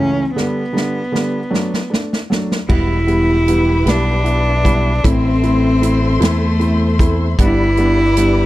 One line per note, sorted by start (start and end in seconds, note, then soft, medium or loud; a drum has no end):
0.00 0.22 C#2 medium
0.00 0.22 E3 medium
0.00 0.22 A3 medium
0.00 0.22 C#4 medium
0.00 0.33 C#4 medium
0.36 0.62 D3 medium
0.36 0.62 G3 medium
0.36 0.62 B3 medium
0.36 1.89 B3 medium
0.36 0.62 D4 medium
0.36 snare soft
0.73 1.00 D3 medium
0.73 1.00 G3 medium
0.73 1.00 B3 soft
0.73 1.00 D4 medium
0.77 snare soft
1.12 1.39 D3 medium
1.12 1.39 G3 soft
1.12 1.39 B3 soft
1.12 1.39 D4 medium
1.12 snare medium
1.50 1.78 F#3 medium
1.50 1.78 A3 medium
1.50 1.78 D4 medium
1.50 snare medium
1.74 snare medium
1.90 2.17 A3 soft
1.90 2.17 D4 medium
1.90 snare medium
2.13 snare medium
2.30 2.56 F#3 medium
2.30 2.57 A3 medium
2.30 2.57 D4 medium
2.30 snare medium
2.52 snare medium
2.68 3.83 E1 medium
2.68 2.95 G3 medium
2.68 2.95 B3 medium
2.68 2.95 E4 medium
2.68 3.91 E4 medium
2.68 5.01 G4 medium
2.68 5.01 B4 medium
2.68 7.34 E5 soft
2.68 5.01 B5 medium
2.68 kick medium
2.68 crash medium
3.07 3.34 G3 medium
3.07 3.34 B3 medium
3.07 3.34 E4 medium
3.07 closed hi-hat soft
3.48 3.74 G3 medium
3.48 3.74 B3 medium
3.48 3.74 E4 medium
3.48 closed hi-hat medium
3.85 5.00 B1 medium
3.85 4.13 G3 medium
3.85 4.12 B3 medium
3.85 4.98 D4 medium
3.85 4.13 E4 medium
3.85 snare medium
3.85 closed hi-hat medium
4.24 4.51 B3 medium
4.24 4.51 E4 medium
4.24 closed hi-hat soft
4.64 4.90 G3 medium
4.64 4.90 B3 medium
4.64 4.91 E4 medium
4.64 kick medium
4.64 closed hi-hat medium
4.98 5.08 D4 medium
5.03 6.17 A1 medium
5.03 5.30 A3 medium
5.03 5.30 C4 medium
5.03 6.23 C4 medium
5.03 5.30 E4 medium
5.03 7.35 A4 medium
5.03 7.36 C5 medium
5.03 7.35 C6 medium
5.03 kick medium
5.03 closed hi-hat medium
5.43 5.69 A3 medium
5.43 5.69 C4 medium
5.43 5.69 E4 medium
5.43 closed hi-hat soft
5.81 6.08 A3 medium
5.81 6.08 C4 medium
5.81 6.08 E4 medium
5.81 closed hi-hat medium
6.19 7.34 E2 medium
6.19 6.47 A3 medium
6.19 6.46 C4 medium
6.19 6.47 E4 medium
6.19 snare medium
6.19 closed hi-hat medium
6.25 7.07 A3 medium
6.59 6.86 A3 medium
6.59 6.86 C4 medium
6.59 6.86 E4 medium
6.59 closed hi-hat soft
6.99 7.26 A3 medium
6.99 7.25 C4 medium
6.99 7.26 E4 medium
6.99 kick medium
6.99 closed hi-hat medium
7.38 8.46 G1 medium
7.38 7.65 G3 medium
7.38 7.65 B3 medium
7.38 7.65 D4 medium
7.38 8.46 G4 medium
7.38 8.46 B4 medium
7.38 8.46 D5 medium
7.38 8.46 B5 medium
7.38 kick medium
7.38 closed hi-hat medium
7.43 8.46 E4 loud
7.77 8.04 G3 medium
7.77 8.04 B3 medium
7.77 8.04 D4 medium
7.77 closed hi-hat soft
8.17 8.43 G3 medium
8.17 8.43 B3 medium
8.17 8.43 D4 medium
8.17 closed hi-hat medium